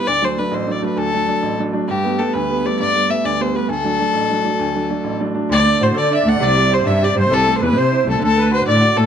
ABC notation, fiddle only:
X:1
M:12/8
L:1/16
Q:3/8=132
K:Dmix
V:1 name="Fiddle"
d2 c2 B2 c2 d2 B2 A8 z4 | G4 A2 B4 d2 d4 e2 d2 c2 B2 | A16- A4 z4 | d4 c2 d2 e2 f2 d4 c2 e2 d2 c2 |
A3- A/2 c/2 B2 c4 A2 A4 c2 d4 A2 |]